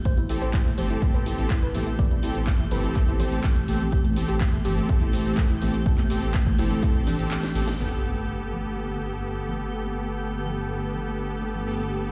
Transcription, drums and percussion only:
0.05 kick loud
0.05 closed hi-hat medium
0.05 maracas medium
0.17 closed hi-hat soft
0.17 high conga medium
0.17 maracas soft
0.29 open hi-hat loud
0.42 closed hi-hat soft
0.42 maracas medium
0.54 kick loud
0.54 clap loud
0.54 closed hi-hat medium
0.54 maracas medium
0.66 closed hi-hat soft
0.66 high conga medium
0.66 maracas soft
0.78 open hi-hat loud
0.78 low conga medium
0.90 closed hi-hat soft
0.90 maracas medium
1.02 kick loud
1.02 closed hi-hat medium
1.02 high conga medium
1.02 maracas medium
1.14 closed hi-hat soft
1.14 maracas soft
1.26 open hi-hat loud
1.38 closed hi-hat soft
1.38 high conga medium
1.38 maracas medium
1.50 kick loud
1.50 clap loud
1.50 closed hi-hat medium
1.50 maracas medium
1.62 closed hi-hat soft
1.62 maracas soft
1.75 open hi-hat loud
1.75 high conga medium
1.75 low conga medium
1.87 closed hi-hat soft
1.87 maracas medium
1.99 kick loud
1.99 closed hi-hat medium
1.99 maracas medium
2.11 closed hi-hat soft
2.11 high conga medium
2.11 maracas soft
2.23 open hi-hat loud
2.35 closed hi-hat soft
2.35 maracas medium
2.47 kick loud
2.47 clap loud
2.47 closed hi-hat medium
2.47 maracas medium
2.59 closed hi-hat soft
2.59 high conga medium
2.59 maracas soft
2.71 open hi-hat loud
2.71 low conga medium
2.83 closed hi-hat soft
2.83 maracas medium
2.96 kick loud
2.96 clap soft
2.96 closed hi-hat medium
2.96 high conga medium
2.96 maracas medium
3.08 closed hi-hat soft
3.08 maracas soft
3.20 open hi-hat loud
3.20 low conga medium
3.32 closed hi-hat soft
3.32 high conga medium
3.32 maracas medium
3.44 kick loud
3.44 clap loud
3.44 closed hi-hat medium
3.44 maracas medium
3.56 closed hi-hat soft
3.56 maracas soft
3.68 open hi-hat loud
3.68 high conga medium
3.80 closed hi-hat soft
3.80 low conga medium
3.80 maracas medium
3.92 kick loud
3.92 closed hi-hat medium
3.92 maracas medium
4.04 closed hi-hat soft
4.04 high conga medium
4.04 maracas soft
4.16 open hi-hat loud
4.28 closed hi-hat soft
4.28 maracas medium
4.41 kick loud
4.41 clap loud
4.41 closed hi-hat medium
4.41 maracas medium
4.53 closed hi-hat soft
4.53 high conga medium
4.53 maracas soft
4.65 open hi-hat loud
4.65 low conga medium
4.77 closed hi-hat soft
4.77 maracas medium
4.89 kick loud
4.89 closed hi-hat medium
4.89 high conga medium
4.89 maracas medium
5.01 closed hi-hat soft
5.01 maracas soft
5.13 open hi-hat loud
5.25 closed hi-hat soft
5.25 high conga medium
5.25 maracas medium
5.37 kick loud
5.37 clap loud
5.37 closed hi-hat medium
5.37 maracas medium
5.50 closed hi-hat soft
5.50 maracas soft
5.62 open hi-hat loud
5.62 high conga medium
5.62 low conga medium
5.74 closed hi-hat soft
5.74 maracas medium
5.86 kick loud
5.86 closed hi-hat medium
5.86 maracas medium
5.97 clap soft
5.97 closed hi-hat soft
5.97 high conga loud
5.97 maracas soft
6.10 open hi-hat loud
6.22 closed hi-hat soft
6.22 maracas medium
6.34 kick loud
6.34 clap loud
6.34 closed hi-hat medium
6.34 maracas medium
6.46 kick medium
6.46 closed hi-hat soft
6.46 high conga medium
6.46 maracas soft
6.59 open hi-hat loud
6.59 low conga medium
6.70 closed hi-hat soft
6.70 maracas medium
6.83 kick loud
6.83 clap soft
6.83 closed hi-hat medium
6.83 high conga medium
6.83 maracas medium
6.94 closed hi-hat soft
6.94 maracas soft
7.07 open hi-hat loud
7.07 low conga medium
7.19 closed hi-hat soft
7.19 high conga medium
7.19 maracas medium
7.31 clap loud
7.31 closed hi-hat medium
7.31 maracas medium
7.43 snare medium
7.43 closed hi-hat soft
7.43 maracas soft
7.55 open hi-hat loud
7.55 high conga medium
7.68 snare loud
7.68 closed hi-hat soft
7.68 low conga medium
7.68 maracas medium
7.91 high conga loud
8.40 high conga medium
8.53 low conga medium
8.77 high conga medium
9.13 high conga medium
9.49 high conga medium
9.49 low conga medium
9.86 high conga loud
10.34 high conga medium
10.46 low conga medium
10.70 high conga medium
10.95 low conga medium
11.07 high conga medium
11.42 high conga medium
11.55 low conga medium
11.79 high conga medium

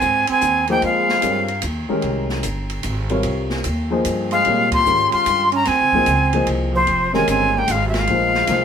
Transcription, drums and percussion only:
0.01 hi-hat pedal soft
0.27 ride medium
0.41 hi-hat pedal medium
0.67 ride soft
0.82 ride soft
1.09 snare soft
1.22 hi-hat pedal medium
1.22 ride medium
1.48 ride soft
1.62 hi-hat pedal medium
1.62 ride medium
2.02 ride soft
2.29 snare soft
2.43 hi-hat pedal medium
2.43 ride medium
2.70 ride soft
2.83 hi-hat pedal medium
2.83 ride medium
3.09 ride soft
3.23 ride medium
3.50 snare soft
3.64 hi-hat pedal soft
3.64 ride medium
4.05 hi-hat pedal medium
4.05 ride medium
4.31 ride soft
4.45 ride soft
4.72 kick medium
4.72 ride medium
4.86 hi-hat pedal medium
5.12 ride soft
5.26 hi-hat pedal medium
5.26 ride medium
5.52 ride soft
5.65 snare soft
5.65 ride medium
5.93 kick soft
6.06 hi-hat pedal soft
6.06 ride medium
6.33 ride soft
6.47 ride medium
6.87 ride medium
7.14 snare soft
7.28 hi-hat pedal soft
7.28 ride medium
7.68 hi-hat pedal medium
7.68 ride medium
7.94 snare medium
7.94 ride soft
8.07 ride soft
8.34 snare soft
8.47 snare soft
8.47 hi-hat pedal soft
8.47 ride medium

